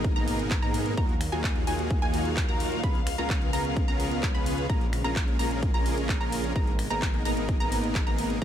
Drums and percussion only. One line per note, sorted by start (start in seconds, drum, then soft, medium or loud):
0.04 kick loud
0.04 closed hi-hat medium
0.16 closed hi-hat soft
0.28 open hi-hat loud
0.39 closed hi-hat medium
0.51 kick loud
0.51 clap loud
0.51 closed hi-hat medium
0.63 closed hi-hat soft
0.74 open hi-hat loud
0.86 closed hi-hat medium
0.97 kick loud
0.97 closed hi-hat medium
1.09 closed hi-hat soft
1.21 finger snap medium
1.21 open hi-hat loud
1.44 kick loud
1.44 clap loud
1.44 closed hi-hat soft
1.56 closed hi-hat soft
1.67 open hi-hat loud
1.79 closed hi-hat soft
1.90 kick loud
1.90 closed hi-hat soft
2.02 closed hi-hat soft
2.14 open hi-hat loud
2.25 closed hi-hat medium
2.37 kick loud
2.37 clap loud
2.37 closed hi-hat medium
2.49 closed hi-hat soft
2.60 open hi-hat loud
2.72 closed hi-hat soft
2.83 kick loud
2.83 closed hi-hat soft
2.95 closed hi-hat soft
3.07 finger snap medium
3.07 open hi-hat loud
3.30 kick loud
3.30 clap loud
3.30 closed hi-hat soft
3.42 closed hi-hat soft
3.53 open hi-hat loud
3.65 closed hi-hat medium
3.76 kick loud
3.76 closed hi-hat soft
3.88 closed hi-hat soft
4.00 open hi-hat loud
4.11 closed hi-hat soft
4.23 kick loud
4.23 clap loud
4.23 closed hi-hat soft
4.35 closed hi-hat soft
4.46 open hi-hat loud
4.58 closed hi-hat medium
4.70 kick loud
4.70 closed hi-hat medium
4.81 closed hi-hat soft
4.93 finger snap medium
4.93 open hi-hat loud
5.05 closed hi-hat medium
5.16 kick loud
5.16 clap loud
5.16 closed hi-hat medium
5.28 closed hi-hat soft
5.39 open hi-hat loud
5.51 closed hi-hat medium
5.63 kick loud
5.63 closed hi-hat medium
5.74 closed hi-hat soft
5.86 open hi-hat loud
5.97 closed hi-hat medium
6.09 kick loud
6.09 clap loud
6.09 closed hi-hat medium
6.21 closed hi-hat soft
6.32 open hi-hat loud
6.44 closed hi-hat medium
6.56 kick loud
6.56 closed hi-hat medium
6.67 closed hi-hat soft
6.79 finger snap medium
6.79 open hi-hat loud
6.91 closed hi-hat medium
7.02 kick loud
7.02 clap loud
7.02 closed hi-hat medium
7.14 closed hi-hat soft
7.25 open hi-hat loud
7.37 closed hi-hat medium
7.49 kick loud
7.49 closed hi-hat medium
7.60 closed hi-hat soft
7.72 open hi-hat loud
7.84 closed hi-hat medium
7.95 kick loud
7.95 clap loud
7.95 closed hi-hat medium
8.07 closed hi-hat soft
8.18 open hi-hat loud
8.30 closed hi-hat medium